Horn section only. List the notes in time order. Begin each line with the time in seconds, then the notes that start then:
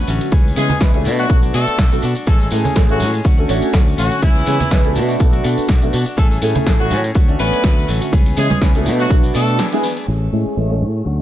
0.57 G#3 G#4
1.19 F#3 F#4
1.55 A3 A4
2.27 A3 A4
2.41 A3 A4
2.89 F#3 F#4
3.98 F#3 F#4
4.22 E3 E4
6.18 A3 A4
6.31 A3 A4
6.80 F#3 F#4
7.40 B3 B4
8.37 G#3 G#4
8.99 F#3 F#4
9.35 A3 A4